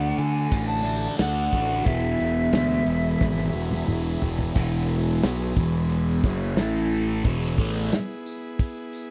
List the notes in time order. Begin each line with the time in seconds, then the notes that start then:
Already playing: D2 D3 A3 D4 F#4 A4 F#5
0.18 D3 G#5, snare, ride
0.52 A1, kick, ride
0.67 A5
0.83 D3 A3 D4, ride
1.17 D2 D3 A3 D4 F#5, snare, ride, tambourine
1.52 A1, kick, ride
1.84 E1 E2 B2 E3 E4 G#4 B4 E5, kick, ride
2.20 E1, ride
2.53 D2, snare, ride, tambourine
2.86 E1, ride
3.21 G#1, kick, snare
3.38 snare
3.53 E1 E2 B2 E3
3.71 high tom
3.87 E1 E2 B2 E3, mid tom, tambourine
4.22 E1, floor tom
4.39 floor tom
4.55 E1 E2 B2 E3 E4 G#4 B4, kick, crash
4.73 tambourine
4.89 open hi-hat, tambourine
5.07 tambourine
5.22 B1 B2 F#3 B3, snare, open hi-hat, tambourine
5.41 tambourine
5.56 E1 E2 B2 E3, kick, open hi-hat, tambourine
5.75 tambourine
5.89 open hi-hat
6.08 tambourine
6.24 F#1 F#2 C#3 F#3, kick, open hi-hat, tambourine
6.42 tambourine
6.56 A1 A2 E3 A3 A4, snare, open hi-hat, tambourine
6.76 tambourine
6.91 open hi-hat, tambourine
7.24 E1 E2 B2 E3 B3 E4 G#4, kick, open hi-hat
7.43 tambourine
7.58 A1 A2 E3 A3, kick, open hi-hat, tambourine
7.77 tambourine
7.92 snare, open hi-hat, tambourine
8.10 tambourine
8.26 open hi-hat, tambourine
8.43 tambourine
8.59 kick, open hi-hat
8.77 tambourine
8.93 open hi-hat, tambourine